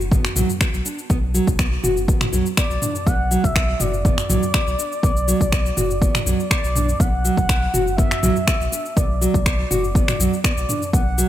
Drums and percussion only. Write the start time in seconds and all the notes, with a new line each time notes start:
0.01 shaker
0.12 kick, mid tom, shaker
0.25 finger snap, shaker
0.36 mid tom, shaker
0.50 shaker
0.61 finger snap, kick, shaker
0.74 shaker
0.86 shaker
0.98 shaker
1.10 kick, shaker
1.35 shaker
1.47 kick, shaker
1.59 finger snap, kick, shaker
1.84 mid tom, shaker
1.97 shaker
2.08 kick, shaker
2.21 finger snap, mid tom, shaker
2.33 shaker
2.46 shaker
2.57 finger snap, kick, shaker
2.71 shaker
2.82 mid tom, shaker
2.95 shaker
3.07 kick, shaker
3.31 shaker
3.44 kick, shaker
3.56 finger snap, kick, shaker
3.80 mid tom, shaker
3.94 shaker
4.05 kick, mid tom, shaker
4.18 finger snap, shaker
4.30 mid tom, shaker
4.43 shaker
4.54 finger snap, kick, shaker
4.68 shaker
4.79 shaker
4.92 shaker
5.03 kick, shaker
5.17 shaker
5.28 shaker
5.41 kick, shaker
5.52 finger snap, kick, shaker
5.66 shaker
5.77 mid tom, shaker
5.91 shaker
6.02 kick, shaker
6.15 finger snap, mid tom, shaker
6.27 shaker
6.40 shaker
6.51 finger snap, kick, shaker
6.64 shaker
6.76 mid tom, shaker
6.89 shaker
7.00 kick, shaker
7.25 shaker
7.37 kick, shaker
7.49 finger snap, kick, shaker
7.74 mid tom, shaker
7.87 shaker
7.98 kick, mid tom, shaker
8.11 finger snap, shaker
8.23 mid tom, shaker
8.36 shaker
8.47 finger snap, kick, shaker
8.61 shaker
8.73 shaker
8.86 shaker
8.97 kick, shaker
9.22 shaker
9.34 kick, shaker
9.46 finger snap, kick, shaker
9.71 mid tom, shaker
9.84 shaker
9.95 kick, shaker
10.08 finger snap, mid tom, shaker
10.20 shaker
10.33 shaker
10.44 finger snap, kick, shaker
10.58 shaker
10.69 mid tom, shaker
10.82 shaker
10.93 kick, shaker
11.18 shaker